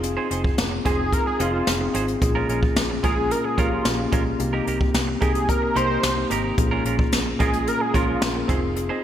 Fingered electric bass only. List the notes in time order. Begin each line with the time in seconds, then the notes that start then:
Already playing: F1
0.31 F1
0.58 F1
0.85 F1
1.40 F1
1.67 F1
1.94 G#1
2.22 A#1
2.49 A#1
2.76 A#1
3.04 A#1
3.58 A#1
3.85 A#1
4.13 A#1
4.40 C2
4.67 C2
4.94 C2
5.22 C2
5.76 C2
6.03 C2
6.31 G#1
6.58 A#1
6.85 A#1
7.12 A#1
7.40 A#1
7.94 A#1
8.22 A#1
8.49 F1